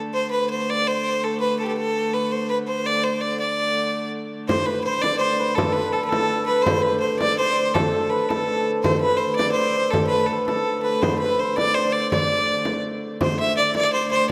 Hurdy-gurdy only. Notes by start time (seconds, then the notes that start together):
Already playing: D3 A3
0.10 D3 A3
4.50 D3 A3
8.86 D3 A3
13.22 D3 A3